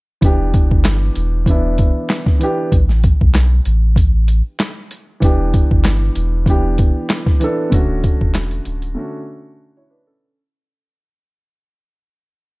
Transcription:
0.21 0.73 E1 loud
0.21 1.28 E3 medium
0.21 1.29 B3 medium
0.21 1.30 D4 medium
0.21 kick loud
0.21 closed hi-hat medium
0.25 1.30 G4 medium
0.54 kick loud
0.54 closed hi-hat medium
0.71 1.10 G1 loud
0.71 kick medium
0.85 snare loud
0.85 clap medium
0.85 closed hi-hat medium
1.15 1.92 E1 medium
1.15 closed hi-hat medium
1.46 2.27 E3 medium
1.46 2.28 B3 medium
1.46 2.28 D4 medium
1.46 kick loud
1.46 closed hi-hat medium
1.50 2.29 E4 medium
1.78 kick medium
1.78 closed hi-hat medium
2.09 snare loud
2.09 clap medium
2.09 closed hi-hat medium
2.26 kick loud
2.26 snare soft
2.39 2.67 E3 medium
2.39 2.68 B3 medium
2.39 2.68 D4 medium
2.39 2.69 G4 loud
2.39 closed hi-hat medium
2.72 3.14 A1 loud
2.72 kick loud
2.72 closed hi-hat loud
2.89 snare soft
3.04 kick loud
3.04 closed hi-hat medium
3.21 3.60 B1 medium
3.21 kick medium
3.35 snare loud
3.35 clap medium
3.35 closed hi-hat medium
3.65 4.42 A1 medium
3.65 closed hi-hat medium
3.96 kick medium
3.96 closed hi-hat medium
4.28 closed hi-hat medium
4.59 snare loud
4.59 clap medium
4.59 closed hi-hat medium
4.91 closed hi-hat medium
5.20 5.64 E1 loud
5.20 6.28 E3 medium
5.20 6.28 B3 medium
5.20 6.29 D4 medium
5.20 kick loud
5.20 closed hi-hat loud
5.24 6.30 G4 medium
5.54 kick medium
5.54 closed hi-hat medium
5.71 6.10 G1 medium
5.71 kick medium
5.84 snare loud
5.84 clap medium
5.84 closed hi-hat medium
6.15 6.92 E1 medium
6.15 closed hi-hat medium
6.46 7.27 E3 medium
6.46 7.28 B3 medium
6.46 7.28 D4 medium
6.46 kick medium
6.46 closed hi-hat medium
6.50 7.29 G4 medium
6.78 kick medium
6.78 closed hi-hat medium
7.10 snare loud
7.10 clap medium
7.10 closed hi-hat medium
7.26 kick loud
7.26 snare soft
7.40 7.67 E3 medium
7.40 7.68 B3 medium
7.40 7.69 D4 medium
7.40 7.69 A4 medium
7.40 closed hi-hat medium
7.70 8.13 D1 loud
7.70 8.78 D3 medium
7.70 8.78 A3 medium
7.70 8.79 C#4 medium
7.70 8.80 F#4 medium
7.70 kick loud
7.70 closed hi-hat loud
8.04 kick loud
8.04 closed hi-hat medium
8.21 8.60 E1 loud
8.21 kick medium
8.34 snare loud
8.34 clap medium
8.34 closed hi-hat medium
8.51 closed hi-hat medium
8.65 8.96 D1 medium
8.65 closed hi-hat medium
8.82 closed hi-hat soft
8.95 9.76 D3 medium
8.95 9.77 A3 medium
8.95 9.60 C#4 medium
8.95 9.61 F#4 medium
9.77 9.91 E4 medium
9.77 9.90 C#5 medium
9.90 10.07 D4 medium
9.90 10.07 B4 medium
10.07 10.37 C#4 medium
10.07 10.37 A4 medium

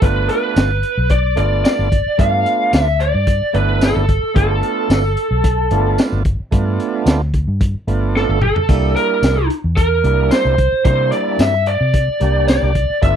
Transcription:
0.01 0.27 G1 medium
0.01 0.71 A3 medium
0.01 0.71 B3 medium
0.01 0.72 D4 medium
0.01 0.72 F4 medium
0.01 0.29 B4 medium
0.01 kick loud
0.01 closed hi-hat medium
0.29 1.11 B4 medium
0.29 closed hi-hat medium
0.56 0.82 G1 medium
0.56 snare loud
0.56 closed hi-hat medium
0.56 tambourine loud
0.83 closed hi-hat medium
0.98 1.35 B1 medium
1.10 1.37 D5 loud
1.10 kick medium
1.10 closed hi-hat medium
1.36 1.63 G1 medium
1.36 1.88 A3 medium
1.36 1.89 B3 medium
1.36 1.89 D4 medium
1.36 1.89 F4 medium
1.36 1.63 D5 medium
1.36 closed hi-hat medium
1.65 2.21 D5 loud
1.65 snare loud
1.65 closed hi-hat medium
1.65 tambourine loud
1.79 2.04 G1 medium
1.92 kick medium
1.92 closed hi-hat medium
2.06 muted fingered electric bass stroke soft
2.18 2.44 G2 medium
2.18 2.88 A3 medium
2.18 2.88 B3 medium
2.18 2.88 D4 medium
2.18 2.88 F4 medium
2.18 2.73 F5 loud
2.18 kick loud
2.18 closed hi-hat medium
2.46 closed hi-hat medium
2.73 3.12 D2 medium
2.73 3.01 E5 loud
2.73 snare loud
2.73 closed hi-hat medium
2.73 tambourine loud
3.00 3.55 D5 loud
3.00 closed hi-hat medium
3.15 3.40 G2 medium
3.27 kick medium
3.27 closed hi-hat medium
3.42 muted fingered electric bass stroke soft
3.53 3.93 G1 medium
3.53 4.05 A3 medium
3.53 4.05 B3 medium
3.53 4.06 D4 medium
3.53 4.06 E4 medium
3.53 3.83 B4 medium
3.53 closed hi-hat medium
3.81 4.36 A4 medium
3.81 snare loud
3.81 closed hi-hat medium
3.81 tambourine loud
3.96 4.21 G1 medium
4.09 kick medium
4.09 closed hi-hat medium
4.23 muted fingered electric bass stroke soft
4.34 4.61 G1 loud
4.34 5.04 A3 medium
4.34 5.04 B3 medium
4.34 5.05 D4 medium
4.34 5.05 F4 medium
4.34 5.95 A4 medium
4.34 kick loud
4.34 closed hi-hat medium
4.63 closed hi-hat medium
4.90 5.15 G1 medium
4.90 snare loud
4.90 closed hi-hat medium
4.90 tambourine loud
5.17 closed hi-hat medium
5.31 5.68 B1 medium
5.44 kick medium
5.44 closed hi-hat medium
5.71 5.96 G1 medium
5.71 6.23 A3 medium
5.71 6.23 B3 medium
5.71 6.23 D4 medium
5.71 6.23 F4 medium
5.71 closed hi-hat medium
5.98 snare loud
5.98 closed hi-hat medium
5.98 tambourine loud
6.12 6.38 G1 medium
6.25 kick medium
6.25 closed hi-hat medium
6.40 muted fingered electric bass stroke soft
6.51 6.78 G2 medium
6.51 7.21 A3 medium
6.51 7.21 B3 medium
6.51 7.21 D4 medium
6.51 7.22 F4 medium
6.51 kick loud
6.51 closed hi-hat medium
6.80 closed hi-hat medium
7.06 7.45 D2 medium
7.06 snare loud
7.06 closed hi-hat medium
7.06 tambourine loud
7.34 kick medium
7.34 closed hi-hat medium
7.48 7.73 G2 medium
7.61 kick medium
7.61 closed hi-hat medium
7.74 muted fingered electric bass stroke soft
7.87 8.26 G1 medium
7.87 8.39 A3 medium
7.87 8.39 B3 medium
7.87 8.40 D4 medium
7.87 8.40 F4 medium
7.87 closed hi-hat medium
8.16 8.42 A4 medium
8.16 snare medium
8.29 8.54 G1 medium
8.41 8.96 A4 medium
8.41 mid tom medium
8.56 floor tom medium
8.69 8.94 C2 medium
8.69 9.38 G3 medium
8.69 9.38 A#3 medium
8.69 9.39 D4 medium
8.69 9.39 E4 medium
8.69 kick loud
8.69 closed hi-hat medium
8.69 splash medium
8.96 9.46 A#4 medium
8.96 closed hi-hat medium
9.22 9.48 C2 loud
9.22 snare loud
9.22 closed hi-hat medium
9.22 tambourine loud
9.50 closed hi-hat medium
9.64 10.02 E2 medium
9.77 10.33 A#4 medium
9.77 kick medium
9.77 closed hi-hat medium
10.03 10.30 C2 medium
10.03 10.55 G3 medium
10.03 10.56 A#3 medium
10.03 10.56 D4 medium
10.03 10.56 E4 medium
10.03 closed hi-hat medium
10.31 10.84 C5 medium
10.31 snare loud
10.31 closed hi-hat medium
10.31 tambourine loud
10.45 10.71 C2 medium
10.58 kick medium
10.58 closed hi-hat medium
10.84 11.11 C3 medium
10.84 11.54 G3 medium
10.84 11.54 A#3 medium
10.84 11.55 D4 medium
10.84 11.55 E4 medium
10.84 11.12 C5 medium
10.84 kick loud
10.84 closed hi-hat medium
11.12 11.40 D5 medium
11.12 closed hi-hat medium
11.39 11.78 G2 medium
11.39 11.68 E5 medium
11.39 snare loud
11.39 closed hi-hat medium
11.39 tambourine loud
11.66 12.48 D5 medium
11.66 closed hi-hat medium
11.81 12.06 C3 medium
11.94 kick medium
11.94 closed hi-hat medium
12.08 muted fingered electric bass stroke soft
12.20 12.60 C2 medium
12.20 12.72 G3 medium
12.20 12.73 A#3 medium
12.20 12.73 D4 medium
12.20 12.73 G4 medium
12.20 closed hi-hat medium
12.48 13.03 D5 medium
12.48 snare loud
12.48 closed hi-hat medium
12.48 tambourine loud
12.62 12.88 C2 medium
12.75 kick medium
12.75 closed hi-hat medium
12.90 muted fingered electric bass stroke soft
13.01 13.16 G1 loud
13.01 13.16 A3 medium
13.01 13.16 B3 medium
13.01 13.16 D4 medium
13.01 13.16 F4 medium
13.01 13.16 E5 loud
13.01 kick loud
13.01 closed hi-hat medium

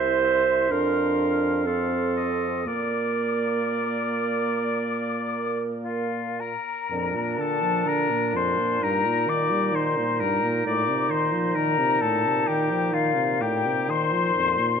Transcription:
0.00 0.66 C2 medium
0.00 0.71 E4 soft
0.00 0.73 C5 medium
0.00 0.24 E5 medium
0.00 1.65 C6 soft
0.24 0.72 E5 medium
0.70 2.63 F2 medium
0.70 1.67 D4 medium
0.70 1.68 A#4 medium
0.70 1.66 F5 soft
1.66 2.67 C4 soft
1.66 2.67 A4 medium
1.66 2.15 F5 soft
1.66 2.65 C6 soft
2.17 2.69 D#5 medium
2.66 6.53 A#2 soft
2.66 6.57 A#3 soft
2.66 6.37 A#4 medium
2.66 5.67 D5 soft
2.66 5.59 D6 soft
5.82 6.42 F4 soft
5.82 6.42 F5 medium
6.40 7.41 A#4 medium
6.40 7.40 A#5 medium
6.91 7.16 F2 medium
6.91 10.62 A#2 medium
6.91 8.84 D4 medium
7.15 7.40 A#2 soft
7.38 7.63 D3 soft
7.38 7.89 A4 medium
7.38 7.89 A5 medium
7.62 7.87 F3 soft
7.86 8.11 D3 medium
7.86 8.35 A#4 medium
7.86 8.38 A#5 medium
8.10 8.35 A#2 medium
8.34 8.59 F2 medium
8.34 8.85 C5 medium
8.34 8.85 C6 medium
8.58 8.81 A#2 soft
8.81 9.06 G2 medium
8.81 14.80 D#4 medium
8.81 9.31 A#4 medium
8.81 9.31 A#5 medium
9.05 9.29 A#2 medium
9.27 9.53 D#3 medium
9.27 9.77 D5 medium
9.27 9.77 D6 medium
9.51 9.75 G3 medium
9.74 9.99 D#3 medium
9.74 10.21 C5 medium
9.74 10.23 C6 medium
9.97 10.22 A#2 medium
10.20 10.44 G2 medium
10.20 10.65 A#4 medium
10.20 10.46 A#5 medium
10.43 10.65 A#2 soft
10.65 10.89 A2 medium
10.65 14.80 A#2 medium
10.65 11.12 D5 medium
10.65 11.12 D6 medium
10.88 11.11 C3 medium
11.10 11.34 D#3 medium
11.10 11.57 C5 medium
11.10 11.58 C6 medium
11.32 11.57 F3 medium
11.55 11.80 D#3 medium
11.55 12.02 A#4 medium
11.55 12.03 A#5 medium
11.79 12.03 C3 medium
12.01 12.27 A2 medium
12.01 12.49 A4 medium
12.01 12.49 A5 medium
12.25 12.47 C3 soft
12.47 12.72 D#3 medium
12.47 12.94 G4 medium
12.47 12.96 G5 medium
12.71 12.94 F3 medium
12.93 13.18 D#3 medium
12.93 13.42 F4 medium
12.93 13.43 F5 medium
13.16 13.43 C3 medium
13.41 13.67 A2 medium
13.41 13.91 G4 medium
13.41 13.90 G5 medium
13.66 13.90 C3 medium
13.89 14.14 D#3 medium
13.89 14.80 C5 medium
13.89 14.80 C6 medium
14.12 14.34 F3 medium
14.35 14.59 F2 medium
14.57 14.80 A#2 medium

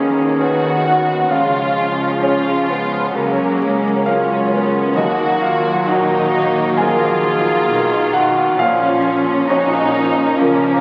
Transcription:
0.00 1.28 D#2 soft
0.00 1.32 B2 soft
0.00 0.83 D#3 soft
0.00 1.28 D#3 soft
0.00 1.32 D#3 soft
0.00 1.36 D#3 soft
0.00 0.38 A#3 soft
0.00 0.41 C#4 soft
0.00 1.07 C#4 soft
0.00 3.15 C#4 soft
0.00 1.36 D#4 soft
0.00 0.85 G#4 medium
0.00 1.36 D#5 soft
0.00 0.82 G#5 medium
0.00 1.36 B5 soft
0.19 0.63 F#4 soft
0.41 0.84 B3 soft
0.41 1.28 C#4 soft
0.41 1.32 F#4 soft
0.41 1.28 B4 soft
0.64 1.36 F#4 soft
0.85 1.31 B3 soft
0.85 1.31 F#4 soft
0.85 1.28 F#5 medium
1.09 1.53 C#4 soft
1.31 3.11 C#2 soft
1.31 3.14 C#2 soft
1.31 3.13 C#3 soft
1.31 3.14 C#3 soft
1.31 3.15 F3 soft
1.31 3.12 G#3 soft
1.31 2.22 C#4 soft
1.31 2.23 F4 soft
1.31 2.19 F5 medium
1.54 2.91 C#4 soft
1.78 2.68 G#4 soft
2.22 3.61 C#4 soft
2.22 3.11 C#4 soft
2.22 2.68 C#4 soft
2.22 3.14 F4 soft
2.22 3.11 G#4 soft
2.22 3.57 C#5 soft
2.22 4.05 C#5 soft
2.46 3.19 F4 soft
2.69 3.16 B3 soft
2.69 3.19 G#4 soft
2.92 3.37 C#4 soft
3.15 4.93 C#2 soft
3.15 4.94 C#2 soft
3.15 4.93 C#3 soft
3.15 5.01 C#3 soft
3.15 4.97 F#3 soft
3.15 3.60 F#3 soft
3.15 4.07 A#3 soft
3.15 4.05 C#4 soft
3.15 8.42 A#4 soft
3.38 4.74 C#4 soft
3.61 4.06 G#3 soft
3.61 4.51 A#4 soft
3.84 7.74 F#3 soft
4.06 4.96 G#3 soft
4.06 4.95 C#4 soft
4.06 4.93 C#4 soft
4.06 4.53 C#4 soft
4.06 4.98 F4 medium
4.06 4.93 A#4 soft
4.06 5.01 C#5 soft
4.06 4.93 F5 medium
4.52 4.97 B3 soft
4.52 5.43 A#4 soft
4.76 5.01 C#4 soft
4.96 7.66 D#2 soft
4.96 7.70 D#2 soft
4.96 7.70 D#3 soft
4.96 8.64 D#3 soft
4.96 8.42 D#3 soft
4.96 6.80 F#3 soft
4.96 5.89 A#3 soft
4.96 5.43 D#4 soft
4.96 5.89 F#4 soft
4.96 5.39 D#5 medium
5.21 6.58 A#3 soft
5.42 5.90 F4 medium
5.42 5.89 A#4 soft
5.42 5.86 F5 medium
5.67 9.57 D#4 soft
5.88 7.34 A#2 soft
5.88 6.33 A#3 soft
5.88 6.80 D#4 soft
5.88 6.80 F#4 medium
5.88 6.75 F#5 medium
6.34 8.56 A#3 soft
6.78 7.24 F3 soft
6.78 8.56 F#3 soft
6.78 8.57 A#3 soft
6.78 8.60 F4 soft
6.78 8.15 G#4 medium
6.78 8.57 A#4 soft
6.78 8.10 G#5 medium
7.03 8.37 A#3 soft
7.25 7.69 F3 soft
7.69 8.59 B1 soft
7.69 8.58 B2 soft
7.69 8.13 D#3 soft
7.69 8.14 A#4 soft
8.13 8.59 D#3 medium
8.13 8.62 F#4 medium
8.13 9.04 A#4 soft
8.13 8.56 F#5 medium
8.38 8.81 A#3 soft
8.59 10.81 A#1 medium
8.59 10.81 A#1 soft
8.59 10.81 A#2 medium
8.59 10.81 C#3 medium
8.59 9.51 F3 soft
8.59 10.81 A#3 medium
8.59 9.49 C#4 soft
8.59 9.48 C#4 soft
8.59 9.50 F4 medium
8.59 9.46 F5 medium
9.06 9.50 A#4 soft
9.28 9.72 F4 soft
9.49 10.81 F2 soft
9.49 10.38 C#4 medium
9.49 10.81 C#4 medium
9.49 10.40 D#4 medium
9.49 9.96 F#4 medium
9.49 9.95 A#4 soft
9.49 10.81 C#5 medium
9.73 10.81 F4 soft
9.94 10.81 F3 medium
9.94 10.81 A#4 soft
10.18 10.63 A#3 soft
10.39 10.81 C#3 soft
10.39 10.81 F3 soft
10.39 10.81 A#3 medium
10.39 10.81 A#3 soft
10.39 10.81 C#4 soft
10.39 10.81 A#4 soft

